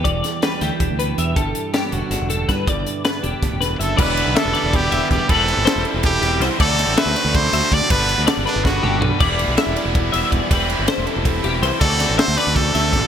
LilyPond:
<<
  \new Staff \with { instrumentName = "Clean electric guitar" } { \time 7/8 \key g \major \tempo 4 = 161 d''4 b'8 g'4 b'8 e''8 | a'4 g'8 fis'4 a'8 b'8 | d''4 b'8 g'4 b'8 e''8 | d''4 e''8 d''4 e''8 d''8 |
b'4 c''8 a'4 g'8 c''8 | d''4 e''8 d''4 e''8 d''8 | b'4 d''8 b'4 g'8 b'8 | d''4 e''8 d''4 e''8 d''8 |
b'4 c''8 a'4 g'8 c''8 | d''4 e''8 d''4 e''8 d''8 | }
  \new Staff \with { instrumentName = "Trumpet" } { \time 7/8 \key g \major r2. r8 | r2. r8 | r2. a'8 | b'4 a'4 g'4 g'8 |
a'4. r8 g'4 r8 | a'4 b'4 c''4 d''8 | b'4 r8 d'8 fis'4 r8 | r2. r8 |
r2. r8 | a'4 c''8 b'8 a'4. | }
  \new Staff \with { instrumentName = "Overdriven electric guitar" } { \time 7/8 \key g \major r2. r8 | r2. r8 | r2. r8 | <e g b e'>2.~ <e g b e'>8 |
<e g c' e'>2.~ <e g c' e'>8 | <d a c' fis'>2.~ <d a c' fis'>8 | <g, d g b d'>2.~ <g, d g b d'>8 | <e g b e'>2.~ <e g b e'>8 |
<e g c' e'>2.~ <e g c' e'>8 | <d a c' fis'>2.~ <d a c' fis'>8 | }
  \new Staff \with { instrumentName = "Clean electric guitar" } { \clef bass \time 7/8 \key g \major << { g4 g4 d'4 g'8 | r4 b4 d'4 e'8~ | e'4 b2~ b8 | r2. r8 |
r2. r8 | r2. r8 | r2. r8 | r2. r8 |
r2. r8 | r2. r8 | } \\ { e,4. e4 b,4 | g,4. d4 g,4 | g,4. d8 a,8 g,8 fis,8 | r2. r8 |
r2. r8 | r2. r8 | r2. r8 | r2. r8 |
r2. r8 | r2. r8 | } >> }
  \new Staff \with { instrumentName = "Fingered electric bass" } { \clef bass \time 7/8 \key g \major e,,8 r4 d,16 r16 e,,16 d,8. e,8 | g,,8 r4 e,,16 r16 g,,16 e,,8. g,8 | g,,8 r4 e,,16 r16 g,,16 e,,8. fis,,8 | e,,8. b,,16 r16 e,,16 r16 e,,8. e,,16 r16 e,,16 r16 |
e,,8. g,,16 r16 e,,16 r16 e,,8. e,,8 c,16 r16 | d,8. a,,16 r16 d,16 r16 d,8. d,16 r16 d,16 r16 | g,,8. d,16 r16 g,,16 r16 g,,8. g,,8 b,,16 r16 | e,,8. b,,16 r16 e,,16 r16 e,,8. e,,16 r16 e,,16 r16 |
e,,8. g,,16 r16 e,,16 r16 e,,8. e,,8 c,16 r16 | d,8. a,,16 r16 d,16 r16 d,8. d,8 a,,16 r16 | }
  \new DrumStaff \with { instrumentName = "Drums" } \drummode { \time 7/8 <hh bd>8 <hh sn>8 <hh sn>8 <hh sn>8 <hh bd>8 hh8 hh8 | <hh bd>8 hh8 <hh sn>8 hh8 <hh sn>8 hh8 <hh bd sn>8 | <hh bd>8 hh8 <hh sn>8 hh8 <hh bd sn>8 <hh sn>8 hh8 | <cymc bd>8 cymr8 <cymr sn>8 cymr8 <bd cymr sn>8 cymr8 <bd cymr sn>8 |
<bd cymr>8 cymr8 <cymr sn>8 cymr8 <bd cymr sn>8 <cymr sn>8 <cymr sn>8 | <cymc bd>8 <cymr sn>8 <cymr sn>8 cymr8 <bd cymr>8 cymr8 <bd cymr sn>8 | <bd cymr>8 cymr8 <cymr sn>8 <cymr sn>8 <bd sn>8 toml8 tomfh8 | <cymc bd>8 cymr8 <cymr sn>8 cymr8 <bd cymr>8 cymr8 <bd cymr>8 |
<bd cymr>8 cymr8 <cymr sn>8 cymr8 <bd cymr>8 cymr8 cymr8 | <cymc bd>8 <cymr sn>8 <cymr sn>8 cymr8 <bd cymr sn>8 <cymr sn>8 <bd cymr sn>8 | }
>>